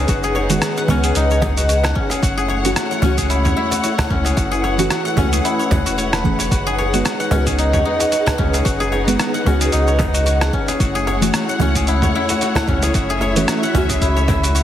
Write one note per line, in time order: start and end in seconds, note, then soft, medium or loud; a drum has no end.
0.00 0.50 G#3 medium
0.00 0.51 B3 medium
0.00 0.89 C#4 medium
0.00 1.16 D#4 medium
0.00 2.19 D#4 medium
0.00 0.51 F#4 loud
0.00 0.23 G#4 medium
0.00 2.20 G#4 medium
0.00 2.19 B4 medium
0.00 0.35 C#5 medium
0.00 0.77 F#5 medium
0.00 10.77 F#5 medium
0.08 0.59 F#1 loud
0.08 0.50 F#4 medium
0.08 kick loud
0.08 closed hi-hat soft
0.08 shaker medium
0.23 1.04 G#4 loud
0.23 shaker soft
0.35 1.31 C#5 medium
0.35 cajon slap medium
0.49 0.86 D#3 medium
0.49 0.86 G#3 medium
0.49 0.87 B3 medium
0.49 0.62 F#4 medium
0.49 0.87 F#4 loud
0.49 closed hi-hat medium
0.49 shaker medium
0.62 1.57 F#4 medium
0.62 cross-stick medium
0.62 closed hi-hat soft
0.62 shaker medium
0.77 1.84 F#5 medium
0.77 shaker soft
0.87 1.12 C#2 medium
0.87 2.21 D#3 medium
0.87 2.21 G#3 medium
0.87 2.22 B3 medium
0.87 1.95 C#4 medium
0.87 2.23 F#4 medium
0.87 cajon bass medium
1.04 2.10 G#4 medium
1.04 closed hi-hat medium
1.04 shaker medium
1.15 1.93 C#2 loud
1.15 1.42 D#4 medium
1.15 closed hi-hat soft
1.15 shaker medium
1.30 2.49 C#5 medium
1.30 shaker soft
1.42 3.36 D#4 medium
1.42 cajon bass medium
1.42 kick loud
1.42 cajon slap medium
1.42 mid tom medium
1.57 1.68 F#4 medium
1.57 closed hi-hat medium
1.57 shaker medium
1.69 2.22 F#4 medium
1.69 closed hi-hat soft
1.69 shaker medium
1.84 2.91 F#5 medium
1.84 cross-stick medium
1.84 cajon slap medium
1.84 shaker soft
1.95 3.02 C#4 medium
1.95 kick loud
2.10 2.37 G#4 medium
2.10 cajon slap medium
2.10 closed hi-hat medium
2.10 shaker medium
2.22 2.73 F#1 loud
2.22 6.48 A3 medium
2.22 6.48 E4 medium
2.22 2.64 F#4 medium
2.22 4.36 C#5 medium
2.22 kick loud
2.22 closed hi-hat soft
2.22 shaker medium
2.38 3.17 G#4 medium
2.38 shaker soft
2.48 3.44 C#5 medium
2.48 cajon slap medium
2.64 3.00 E3 medium
2.64 3.01 A3 medium
2.64 3.01 C#4 medium
2.64 2.76 F#4 medium
2.64 3.01 F#4 medium
2.64 closed hi-hat medium
2.64 shaker medium
2.76 3.71 F#4 medium
2.76 cross-stick medium
2.76 closed hi-hat soft
2.76 shaker medium
2.91 3.98 F#5 medium
2.91 shaker soft
3.01 3.54 C#2 medium
3.01 4.75 E3 medium
3.01 4.75 A3 medium
3.01 4.10 C#4 medium
3.01 4.76 C#4 medium
3.01 4.77 F#4 loud
3.01 cajon bass medium
3.18 4.25 G#4 medium
3.18 kick medium
3.18 closed hi-hat medium
3.18 shaker medium
3.30 3.56 E4 medium
3.30 closed hi-hat soft
3.30 shaker medium
3.45 4.63 C#5 medium
3.45 mid tom medium
3.45 shaker soft
3.57 5.44 E4 medium
3.71 3.83 F#4 medium
3.71 cajon slap medium
3.71 closed hi-hat soft
3.71 shaker medium
3.83 4.36 F#4 medium
3.83 closed hi-hat soft
3.83 shaker medium
3.98 5.05 F#5 medium
3.98 cajon bass medium
3.98 cross-stick medium
3.98 shaker soft
4.10 4.33 C#2 medium
4.10 5.17 C#4 medium
4.10 kick loud
4.10 cajon slap soft
4.10 mid tom medium
4.25 4.51 G#4 medium
4.25 cajon slap medium
4.25 closed hi-hat soft
4.25 shaker medium
4.37 4.88 F#1 medium
4.37 4.78 F#4 medium
4.37 10.77 B4 medium
4.37 kick loud
4.37 closed hi-hat soft
4.37 shaker medium
4.51 5.33 G#4 medium
4.51 shaker soft
4.64 5.59 C#5 medium
4.64 cajon slap medium
4.78 5.14 E3 medium
4.78 5.15 A3 medium
4.78 5.15 C#4 medium
4.78 4.91 F#4 medium
4.78 5.15 F#4 loud
4.78 closed hi-hat soft
4.78 shaker medium
4.90 5.86 F#4 medium
4.90 cross-stick medium
4.90 closed hi-hat soft
4.90 shaker medium
5.05 5.71 F#5 medium
5.05 shaker soft
5.16 5.40 C#2 medium
5.16 6.22 E3 medium
5.16 6.22 A3 medium
5.16 7.31 C#4 medium
5.16 6.23 C#4 medium
5.16 cajon bass medium
5.16 mid tom medium
5.20 6.24 F#4 medium
5.33 6.66 G#4 medium
5.33 closed hi-hat soft
5.33 shaker medium
5.45 7.65 E4 medium
5.45 closed hi-hat soft
5.45 shaker medium
5.59 5.97 C#5 medium
5.59 shaker soft
5.71 5.84 C#2 medium
5.71 6.25 F#5 medium
5.71 kick loud
5.71 cajon bass medium
5.71 cajon slap medium
5.71 mid tom medium
5.86 6.48 E1 medium
5.86 6.51 F#4 medium
5.86 closed hi-hat soft
5.86 shaker medium
5.98 6.39 C#5 medium
5.98 closed hi-hat soft
5.98 shaker medium
6.13 8.18 B4 medium
6.13 cross-stick medium
6.13 cajon slap soft
6.13 shaker soft
6.23 6.32 E3 medium
6.23 6.33 A3 medium
6.23 6.33 C#4 medium
6.23 6.33 G#4 medium
6.23 7.19 F#5 medium
6.23 kick medium
6.39 6.78 C#5 medium
6.39 cajon slap medium
6.39 closed hi-hat medium
6.39 shaker medium
6.51 7.02 F#1 loud
6.51 10.77 D#4 medium
6.51 6.93 F#4 medium
6.51 10.77 G#4 medium
6.51 kick loud
6.51 closed hi-hat soft
6.51 shaker medium
6.67 7.46 G#4 loud
6.67 shaker soft
6.78 7.73 C#5 medium
6.78 cajon slap medium
6.93 7.29 D#3 medium
6.93 7.29 G#3 medium
6.93 7.29 B3 medium
6.93 7.04 F#4 medium
6.93 7.30 F#4 medium
6.93 closed hi-hat medium
6.93 shaker medium
7.05 8.00 F#4 medium
7.05 cross-stick medium
7.05 closed hi-hat soft
7.05 shaker medium
7.20 8.26 F#5 medium
7.20 shaker soft
7.30 7.83 C#2 medium
7.30 9.03 D#3 medium
7.30 9.04 G#3 medium
7.30 9.05 B3 medium
7.30 8.38 C#4 medium
7.30 9.05 F#4 loud
7.30 cajon bass medium
7.46 8.53 G#4 medium
7.46 kick medium
7.46 closed hi-hat medium
7.46 shaker medium
7.59 7.85 D#4 medium
7.59 closed hi-hat soft
7.59 shaker medium
7.73 8.91 C#5 medium
7.73 mid tom medium
7.73 shaker soft
7.85 9.72 D#4 medium
8.00 8.11 F#4 medium
8.00 cajon slap medium
8.00 closed hi-hat soft
8.00 shaker medium
8.12 8.64 F#4 medium
8.12 closed hi-hat soft
8.12 shaker medium
8.26 9.34 F#5 medium
8.26 cajon bass medium
8.26 cross-stick medium
8.26 shaker soft
8.38 8.62 C#2 medium
8.38 9.46 C#4 medium
8.38 kick loud
8.38 mid tom medium
8.53 8.80 G#4 medium
8.53 cajon slap medium
8.53 closed hi-hat medium
8.53 shaker medium
8.65 9.16 F#1 loud
8.65 9.07 F#4 medium
8.65 kick loud
8.65 closed hi-hat soft
8.65 shaker medium
8.80 9.61 G#4 loud
8.80 shaker soft
8.92 9.87 C#5 medium
8.92 cajon slap medium
9.06 9.43 D#3 medium
9.06 9.43 G#3 medium
9.06 9.44 B3 medium
9.06 9.19 F#4 medium
9.06 9.44 F#4 loud
9.06 closed hi-hat medium
9.06 shaker medium
9.19 10.14 F#4 medium
9.19 cross-stick medium
9.19 closed hi-hat soft
9.19 shaker medium
9.34 10.41 F#5 medium
9.34 shaker soft
9.44 9.69 C#2 medium
9.44 10.78 D#3 medium
9.44 10.78 G#3 medium
9.44 10.79 B3 medium
9.44 10.53 C#4 medium
9.44 10.80 F#4 medium
9.44 cajon bass medium
9.61 10.68 G#4 medium
9.61 closed hi-hat medium
9.61 shaker medium
9.72 10.50 C#2 medium
9.72 9.99 D#4 medium
9.72 closed hi-hat soft
9.72 shaker medium
9.87 11.07 C#5 medium
9.87 shaker soft
9.99 11.94 D#4 medium
9.99 kick loud
9.99 cajon bass medium
9.99 cajon slap medium
9.99 mid tom medium
10.14 10.25 F#4 medium
10.14 closed hi-hat soft
10.14 shaker medium
10.26 10.80 F#4 medium
10.26 closed hi-hat soft
10.26 shaker medium
10.41 11.49 F#5 medium
10.41 cross-stick medium
10.41 cajon slap medium
10.41 shaker soft
10.53 11.61 C#4 medium
10.53 kick medium
10.68 10.95 G#4 medium
10.68 cajon slap medium
10.68 closed hi-hat medium
10.68 shaker medium
10.80 11.31 F#1 loud
10.80 14.63 A3 medium
10.80 14.63 E4 medium
10.80 11.22 F#4 medium
10.80 14.63 C#5 medium
10.80 12.92 F#5 medium
10.80 kick loud
10.80 closed hi-hat soft
10.80 shaker medium
10.95 11.76 G#4 loud
10.95 shaker soft
11.07 12.03 C#5 medium
11.07 cajon slap medium
11.21 11.57 E3 medium
11.21 11.57 A3 medium
11.21 11.58 C#4 medium
11.21 11.34 F#4 medium
11.21 11.58 F#4 medium
11.21 closed hi-hat medium
11.21 shaker medium
11.34 12.30 F#4 medium
11.34 cross-stick medium
11.34 closed hi-hat soft
11.34 shaker medium
11.49 12.56 F#5 medium
11.49 shaker soft
11.59 12.11 C#2 medium
11.59 13.32 E3 loud
11.59 13.32 A3 medium
11.59 13.33 C#4 medium
11.59 12.68 C#4 medium
11.59 13.34 F#4 loud
11.59 cajon bass medium
11.75 12.83 G#4 medium
11.75 kick medium
11.75 closed hi-hat medium
11.75 shaker medium
11.87 12.15 E4 medium
11.87 closed hi-hat soft
11.87 shaker medium
12.02 13.21 C#5 medium
12.02 mid tom medium
12.02 shaker soft
12.15 14.01 E4 medium
12.29 12.41 F#4 medium
12.29 cajon slap medium
12.29 closed hi-hat medium
12.29 shaker medium
12.41 12.94 F#4 medium
12.41 closed hi-hat soft
12.41 shaker medium
12.55 13.63 F#5 loud
12.55 cajon bass medium
12.55 cross-stick medium
12.55 shaker soft
12.67 12.91 C#2 medium
12.67 13.74 C#4 medium
12.67 kick loud
12.67 cajon slap soft
12.67 mid tom medium
12.82 13.09 G#4 medium
12.82 cajon slap medium
12.82 closed hi-hat medium
12.82 shaker medium
12.94 13.45 F#1 medium
12.94 13.37 F#4 medium
12.94 14.63 E5 medium
12.94 kick loud
12.94 closed hi-hat soft
12.94 shaker soft
13.09 13.89 G#4 loud
13.09 shaker soft
13.21 14.16 C#5 medium
13.21 cajon slap medium
13.36 13.72 E3 medium
13.36 13.72 A3 medium
13.36 13.72 C#4 medium
13.36 13.48 F#4 medium
13.36 13.73 F#4 medium
13.36 closed hi-hat medium
13.36 shaker medium
13.48 14.43 F#4 medium
13.48 cross-stick medium
13.48 closed hi-hat soft
13.48 shaker medium
13.63 14.63 F#5 medium
13.63 shaker soft
13.73 13.98 C#2 medium
13.73 14.63 E3 medium
13.73 14.63 A3 medium
13.73 14.63 C#4 medium
13.73 14.63 F#4 medium
13.73 cajon bass medium
13.73 mid tom medium
13.89 14.63 G#4 medium
13.89 kick medium
13.89 cajon slap medium
13.89 closed hi-hat medium
13.89 shaker medium
14.01 14.63 C#2 medium
14.01 14.28 E4 medium
14.01 kick medium
14.01 closed hi-hat soft
14.01 shaker medium
14.16 14.63 C#5 medium
14.16 shaker soft
14.28 14.63 E4 medium
14.28 kick loud
14.28 cajon bass medium
14.28 cajon slap medium
14.28 mid tom medium
14.43 14.54 F#4 medium
14.43 closed hi-hat medium
14.43 shaker medium
14.55 14.63 F#4 medium
14.55 closed hi-hat soft
14.55 shaker medium